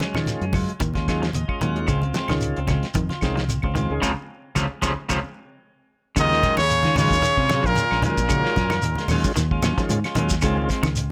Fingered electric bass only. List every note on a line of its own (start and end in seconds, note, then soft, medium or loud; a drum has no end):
0.15 0.26 D#3 medium
0.29 muted fingered electric bass stroke soft
0.41 0.65 F#2 medium
0.81 1.29 D#2 medium
1.35 1.48 D#2 medium
1.63 1.86 D#2 medium
1.89 2.12 C#2 loud
2.31 2.54 C#2 medium
2.58 2.81 C#2 medium
2.95 3.08 F2 medium
3.23 3.59 C2 medium
3.64 3.87 C#2 medium
3.90 4.01 C#2 medium
4.03 4.13 C#2 medium
4.56 4.67 C#2 medium
4.83 4.94 C#2 medium
5.10 5.20 C#2 medium
6.17 6.40 D#2 loud
6.59 6.82 D#2 medium
6.85 7.08 D#3 medium
7.11 7.22 D#2 medium
7.37 7.61 C3 medium
7.64 7.75 A#1 medium
7.92 8.02 A#1 medium
8.18 8.42 A#1 medium
8.57 8.81 F#2 loud
8.83 8.96 D#2 medium
9.11 9.23 D#2 loud
9.37 9.61 D#2 loud
9.63 9.76 D#2 medium
9.90 10.02 G#2 loud
10.17 10.40 D#2 loud
10.44 10.67 C#2 loud
10.83 11.07 C#2 medium